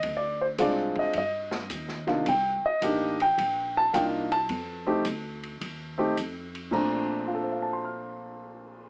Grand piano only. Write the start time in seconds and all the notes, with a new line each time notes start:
Already playing: D#5
0.16 D5
0.41 C5
0.58 G#3 C4 D4 F4 D5
0.99 D#5
1.18 D#5
2.07 C3 A#3 D4 D#4 F4
2.28 G5
2.66 D#5
2.82 A#3 D4 D#4 G4
3.22 G5
3.77 A5
3.93 A#3 D4 D#4 F4 G5
4.32 A5
4.87 A3 C4 D#4 G4
5.98 A3 C4 D#4 G4
6.71 A#2 A3 C4 D4 A#5
7.28 F4
7.35 A4
7.43 C5
7.52 F5
7.62 A5
7.73 C6
7.85 F6